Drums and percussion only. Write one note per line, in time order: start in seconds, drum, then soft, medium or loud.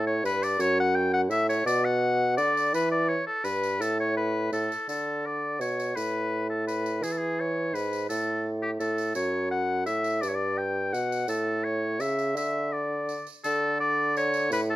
0.25 tambourine medium
0.43 tambourine medium
0.60 tambourine medium
1.31 tambourine soft
1.50 tambourine soft
1.68 tambourine medium
2.38 tambourine medium
2.57 tambourine medium
2.74 tambourine medium
3.45 tambourine medium
3.63 tambourine medium
3.82 tambourine medium
4.53 tambourine medium
4.72 tambourine soft
4.89 tambourine medium
5.61 tambourine soft
5.80 tambourine soft
5.97 tambourine medium
6.68 tambourine medium
6.86 tambourine soft
7.04 tambourine medium
7.75 tambourine medium
7.93 tambourine soft
8.10 tambourine medium
8.80 tambourine medium
8.98 tambourine soft
9.15 tambourine medium
9.87 tambourine medium
10.04 tambourine soft
10.23 tambourine medium
10.94 tambourine soft
11.12 tambourine medium
11.28 tambourine medium
12.00 tambourine soft
12.19 tambourine soft
12.37 tambourine medium
13.09 tambourine soft
13.27 tambourine soft
13.44 tambourine medium
14.17 tambourine medium
14.34 tambourine medium
14.52 tambourine medium